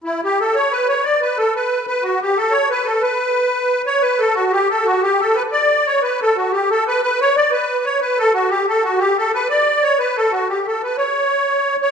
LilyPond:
\new Staff \with { instrumentName = "Accordion" } { \time 6/8 \key b \minor \tempo 4. = 121 e'8 g'8 a'8 cis''8 b'8 cis''8 | d''8 b'8 a'8 b'4 b'8 | fis'8 g'8 a'8 cis''8 b'8 a'8 | b'2~ b'8 cis''8 |
b'8 a'8 fis'8 g'8 a'8 fis'8 | g'8 a'8 b'8 d''4 cis''8 | b'8 a'8 fis'8 g'8 a'8 b'8 | b'8 cis''8 d''8 b'4 cis''8 |
b'8 a'8 fis'8 g'8 a'8 fis'8 | g'8 a'8 b'8 d''4 cis''8 | b'8 a'8 fis'8 g'8 a'8 b'8 | cis''2~ cis''8 cis''8 | }